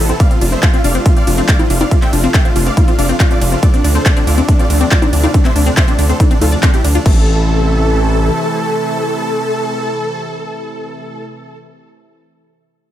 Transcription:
Already playing: analog synth pad C3 E3 B3 E4
0.00 analog synth bass A1
0.09 synth arpeggio sound C4, supersaw synth A4, closed hi-hat
0.20 analog synth pad F3 A3 D4, synth arpeggio sound A3, supersaw synth D5 F5, kick, closed hi-hat
0.31 synth arpeggio sound C4, supersaw synth F4, closed hi-hat
0.41 analog synth bass F1, synth arpeggio sound D4, supersaw synth F4, open hi-hat, ride
0.52 synth arpeggio sound C4, supersaw synth C5 E5, closed hi-hat
0.63 synth arpeggio sound A3, supersaw synth F4, kick, clap, closed hi-hat
0.73 synth arpeggio sound C4, supersaw synth F4, closed hi-hat
0.84 analog synth bass F1, synth arpeggio sound D4, supersaw synth D5 F5, open hi-hat, ride
0.95 synth arpeggio sound C4, supersaw synth F4, closed hi-hat
1.06 synth arpeggio sound A3, supersaw synth F4, kick, closed hi-hat
1.16 synth arpeggio sound C4, supersaw synth D5 F5, closed hi-hat
1.27 analog synth bass F1, synth arpeggio sound D4, supersaw synth F4, open hi-hat, ride
1.38 synth arpeggio sound C4, supersaw synth F4, closed hi-hat
1.48 synth arpeggio sound A3, supersaw synth D5 F5, kick, clap, closed hi-hat
1.59 synth arpeggio sound C4, supersaw synth F4, closed hi-hat, high conga
1.70 analog synth bass F1, synth arpeggio sound D4, supersaw synth F4, open hi-hat, ride
1.81 synth arpeggio sound C4, supersaw synth D5 F5, closed hi-hat, high conga
1.91 synth arpeggio sound A3, supersaw synth F4, kick, closed hi-hat
2.02 synth arpeggio sound C4, supersaw synth E5 G5, clap, closed hi-hat
2.13 analog synth bass F1, synth arpeggio sound D4, supersaw synth F4, open hi-hat, ride
2.23 synth arpeggio sound C4, supersaw synth F4, closed hi-hat
2.34 synth arpeggio sound A3, supersaw synth E5 G5, kick, clap, closed hi-hat
2.45 synth arpeggio sound C4, supersaw synth F4, closed hi-hat
2.55 analog synth bass F1, synth arpeggio sound D4, supersaw synth F4, open hi-hat, ride
2.66 synth arpeggio sound C4, supersaw synth D5 F5, closed hi-hat
2.77 synth arpeggio sound A3, supersaw synth F4, kick, closed hi-hat, high conga
2.88 synth arpeggio sound C4, supersaw synth F4, closed hi-hat
2.98 analog synth bass F1, synth arpeggio sound D4, supersaw synth D5 F5, open hi-hat, ride
3.09 synth arpeggio sound C4, supersaw synth F4, closed hi-hat
3.20 synth arpeggio sound A3, supersaw synth F4, kick, clap, closed hi-hat
3.31 synth arpeggio sound C4, supersaw synth F4 D5, closed hi-hat
3.41 analog synth bass F1, synth arpeggio sound D4, supersaw synth F4, open hi-hat, ride
3.52 synth arpeggio sound C4, supersaw synth F4, closed hi-hat
3.63 analog synth pad C3, synth arpeggio sound A3, supersaw synth F4 D5, kick, closed hi-hat
3.74 synth arpeggio sound C4, supersaw synth D4, closed hi-hat
3.84 analog synth bass D2, synth arpeggio sound D4, supersaw synth D4, open hi-hat, ride
3.95 synth arpeggio sound C4, supersaw synth A4 C5, closed hi-hat
4.06 synth arpeggio sound A3, supersaw synth D4, kick, clap, closed hi-hat
4.16 synth arpeggio sound C4, supersaw synth D4, closed hi-hat
4.27 analog synth bass D2, synth arpeggio sound D4, supersaw synth F4 D5, open hi-hat, ride
4.38 synth arpeggio sound C4, supersaw synth D4, closed hi-hat
4.49 synth arpeggio sound A3, supersaw synth D4, kick, closed hi-hat
4.59 synth arpeggio sound C4, supersaw synth F4 D5, closed hi-hat
4.70 analog synth bass D2, synth arpeggio sound D4, supersaw synth D4, open hi-hat, ride
4.81 synth arpeggio sound C4, supersaw synth D4, closed hi-hat
4.91 synth arpeggio sound A3, supersaw synth F4 D5, kick, clap, closed hi-hat
5.02 synth arpeggio sound C4, supersaw synth D4, closed hi-hat, high conga
5.13 analog synth bass D2, supersaw synth D4, synth arpeggio sound D4, open hi-hat, ride
5.23 synth arpeggio sound C4, supersaw synth F4 D5, closed hi-hat, high conga
5.34 synth arpeggio sound A3, supersaw synth D4, kick, closed hi-hat
5.45 synth arpeggio sound C4, supersaw synth C5 E5, clap, closed hi-hat
5.56 analog synth bass D2, synth arpeggio sound D4, supersaw synth D4, open hi-hat, ride
5.66 synth arpeggio sound C4, supersaw synth D4, closed hi-hat
5.77 synth arpeggio sound A3, supersaw synth C5 E5, kick, clap, closed hi-hat
5.88 synth arpeggio sound C4, supersaw synth D4, closed hi-hat
5.99 analog synth bass D2, supersaw synth D4, synth arpeggio sound D4, open hi-hat, ride
6.09 synth arpeggio sound C4, supersaw synth A4 C5, closed hi-hat
6.20 synth arpeggio sound A3, supersaw synth D4, kick, closed hi-hat, high conga
6.31 synth arpeggio sound C4, supersaw synth D4, closed hi-hat
6.41 analog synth bass D2, synth arpeggio sound A3, supersaw synth F4 A4, open hi-hat, ride, high conga
6.52 supersaw synth D4, synth arpeggio sound D5, closed hi-hat
6.63 synth arpeggio sound C4, supersaw synth D4, kick, clap, closed hi-hat
6.74 synth arpeggio sound C4, supersaw synth E4 G4, closed hi-hat
6.84 analog synth bass D2, synth arpeggio sound D4, supersaw synth D4, open hi-hat, ride
6.95 supersaw synth D4, synth arpeggio sound F4, closed hi-hat
7.06 analog synth bass A1, analog synth pad C3 E3 A3 E4, synth arpeggio sound A3, supersaw synth A4, kick, crash

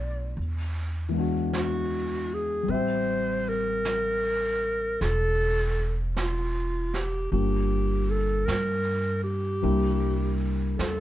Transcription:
Already playing: upright bass B1, grand piano F3 A3 B3 D4 F4, clarinet D5
0.37 upright bass E2, brush sweep
1.09 grand piano E3 G#3
1.14 grand piano B3 D4
1.20 grand piano F#4
1.53 clarinet F#4, brush sweep, snare, hi-hat pedal
2.34 clarinet G#4
2.63 grand piano G3
2.68 upright bass A1, grand piano C4 E5, clarinet C5, brush sweep
2.74 grand piano G4
3.49 clarinet A#4
3.85 brush sweep, snare, hi-hat pedal
5.01 upright bass E1, clarinet A4, brush sweep, snare
6.17 clarinet F4, brush sweep, snare, hi-hat pedal
6.94 clarinet G4, snare
7.32 upright bass G1, grand piano G3 A#3 D4 F4 G4, clarinet G4, brush sweep
8.10 clarinet A4
8.46 upright bass G2, clarinet A#4, brush sweep, snare, hi-hat pedal
9.24 clarinet G4
9.62 upright bass C2, grand piano G3 A#3 D4 E4 G4, brush sweep
10.77 upright bass E2, clarinet A4, brush sweep, snare, hi-hat pedal

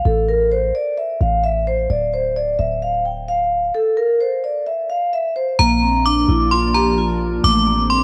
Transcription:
0.05 808-style bass A1, vibraphone A4
0.29 vibraphone A#4
0.52 vibraphone C5
0.75 vibraphone D5
0.98 vibraphone E5
1.21 808-style bass A1, vibraphone F5
1.44 vibraphone E5
1.67 vibraphone C5
1.90 808-style bass D1, vibraphone D5
2.14 vibraphone C5
2.36 vibraphone D5
2.59 808-style bass D1, vibraphone E5
2.82 vibraphone F5
3.05 vibraphone G5
3.28 vibraphone F5
3.74 vibraphone A4
3.97 vibraphone A#4
4.21 vibraphone C5
4.44 vibraphone D5
4.67 vibraphone E5
4.90 vibraphone F5
5.13 vibraphone E5
5.36 vibraphone C5
5.59 808-style bass A#1, ambient pad F3 A#3 D4, vibraphone A#3, synth bell A#5
5.82 vibraphone C4
6.05 vibraphone D4, synth bell D6
6.28 808-style bass A#1, vibraphone E4
6.51 vibraphone F4, synth bell C6
6.74 vibraphone G4, synth bell A#5
6.98 vibraphone F4
7.44 808-style bass A1, ambient pad G3 A3 C4, vibraphone A3, synth bell D6
7.67 vibraphone A#3
7.90 vibraphone C4, synth bell C6

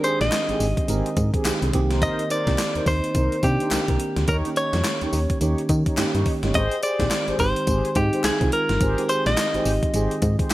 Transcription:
Already playing: fm electric piano D#3 G#3 C4 D4 G4
0.03 analog polysynth C4 G4 G#4, clean electric guitar C5, closed hi-hat, tambourine
0.21 fm bass A#1, clean electric guitar D#5, snare, closed hi-hat
0.32 snare, clap, closed hi-hat, tambourine
0.49 fm bass G#1, fm electric piano D#3 G#3 C4 G4, analog polysynth C4 G4 G#4, closed hi-hat
0.60 fm bass G#1, open hi-hat, tambourine
0.77 kick, closed hi-hat
0.88 fm bass G#1, fm electric piano D#3 G#3 C4 A#4, analog polysynth C4 G4 G#4, closed hi-hat, tambourine
1.06 closed hi-hat
1.17 fm bass G#2, kick, closed hi-hat, tambourine
1.33 analog polysynth C4 G4 G#4, kick, closed hi-hat
1.45 fm bass C2, fm electric piano D#3 G#3 C4 G4, snare, clap, closed hi-hat, tambourine
1.62 fm bass C2, analog polysynth C4 G4 G#4, closed hi-hat
1.73 fm bass C2, fm electric piano D#3 A#3 C4 G4, kick, closed hi-hat
1.90 analog polysynth D#4 A#4 C5, snare, closed hi-hat
2.01 analog polysynth D#4 A#4 C5, clean electric guitar D#5, kick, closed hi-hat, tambourine
2.19 closed hi-hat
2.30 analog polysynth D#4 A#4 C5, clean electric guitar D5, closed hi-hat, tambourine
2.47 fm bass C2, fm electric piano D#3 A#3 C4 G4, kick, snare, closed hi-hat
2.58 snare, clap, closed hi-hat, tambourine
2.75 fm bass D#2, analog polysynth D#4 A#4 C5, closed hi-hat
2.86 fm bass D#2, fm electric piano D#3 A#3 C4 D#4, clean electric guitar C5, kick, open hi-hat, tambourine
3.04 closed hi-hat
3.14 fm bass C2, analog polysynth D#4 A#4 C5, kick, closed hi-hat, tambourine
3.32 closed hi-hat
3.43 fm bass C3, fm electric piano D#3 A#3 C4 D4, clean electric guitar G4, kick, closed hi-hat, tambourine
3.60 analog polysynth D#4 A#4 C5, closed hi-hat
3.71 fm bass C2, snare, clap, closed hi-hat, tambourine
3.88 fm bass C2, fm electric piano D#3 A#3 C4 A#4, kick, closed hi-hat
4.00 closed hi-hat
4.16 fm bass D2, snare, closed hi-hat
4.28 fm bass D#2, analog polysynth D#4 G4 C#5, clean electric guitar A#4, kick, closed hi-hat, tambourine
4.45 fm electric piano D#3 A#3 C#4 G4, closed hi-hat
4.56 analog polysynth D#4 G4 C#5, clean electric guitar C#5, closed hi-hat, tambourine
4.73 fm bass F2, snare, closed hi-hat
4.84 snare, clap, closed hi-hat, tambourine
5.01 fm bass D#2, fm electric piano D#3 A#3 C#4 G4, analog polysynth D#4 G4 C#5, closed hi-hat
5.13 fm bass D#2, open hi-hat, tambourine
5.30 kick, closed hi-hat
5.41 fm bass D#2, fm electric piano D#3 A#3 C#4 G4, analog polysynth D#4 G4 C#5, closed hi-hat, tambourine
5.58 closed hi-hat
5.69 fm bass D#3, kick, closed hi-hat, tambourine
5.86 analog polysynth D#4 G4 C#5, kick, closed hi-hat
5.97 fm bass G2, fm electric piano D#3 A#3 C#4 G4, snare, clap, closed hi-hat, tambourine
6.14 fm bass G2, analog polysynth D#4 G4 C#5, closed hi-hat
6.26 kick, open hi-hat
6.43 fm bass G1, fm electric piano D#3 A#3 C#4 G4, analog polysynth D#4 G4 C#5, snare, closed hi-hat
6.54 fm bass G#1, analog polysynth G4 G#4 C5, clean electric guitar D#5, kick, closed hi-hat, tambourine
6.72 closed hi-hat
6.82 analog polysynth G4 G#4 C5, clean electric guitar D5, closed hi-hat, tambourine
7.00 fm bass A#1, fm electric piano D#3 G#3 C4 G4, kick, snare, closed hi-hat
7.11 snare, clap, closed hi-hat, tambourine
7.28 fm bass G#1, analog polysynth G4 G#4 C5, closed hi-hat
7.39 fm bass G#1, fm electric piano D#3 G#3 C4 G4, clean electric guitar C5, kick, open hi-hat, tambourine
7.56 closed hi-hat
7.67 fm bass G#1, analog polysynth G4 G#4 C5, kick, closed hi-hat, tambourine
7.85 closed hi-hat
7.95 fm bass G#2, fm electric piano D#3 G#3 C4 D#4, clean electric guitar G4, kick, closed hi-hat, tambourine
8.12 analog polysynth G4 G#4 C5, closed hi-hat
8.24 fm bass C2, clean electric guitar G#4, snare, clap, closed hi-hat, tambourine
8.41 fm bass C2, fm electric piano D#3 G#3 C4 F4, kick, closed hi-hat
8.52 clean electric guitar A#4, closed hi-hat
8.69 fm bass G1, snare, closed hi-hat
8.80 fm bass G#1, analog polysynth G4 G#4 C5, kick, closed hi-hat, tambourine
8.98 fm electric piano D#3 G#3 C4 G4, closed hi-hat
9.09 analog polysynth G4 G#4 C5, clean electric guitar C5, closed hi-hat, tambourine
9.26 fm bass A#1, clean electric guitar D#5, snare, closed hi-hat
9.37 snare, clap, closed hi-hat, tambourine
9.54 fm bass G#1, fm electric piano D#3 G#3 C4 G4, analog polysynth G4 G#4 C5, closed hi-hat
9.65 fm bass G#1, open hi-hat, tambourine
9.83 kick, closed hi-hat
9.93 fm bass G#1, fm electric piano D#3 G#3 C4 G#4, analog polysynth G4 G#4 C5, closed hi-hat, tambourine
10.11 closed hi-hat
10.22 fm bass G#2, kick, closed hi-hat, tambourine
10.39 analog polysynth G4 G#4 C5, kick, closed hi-hat
10.50 fm bass C2, clap

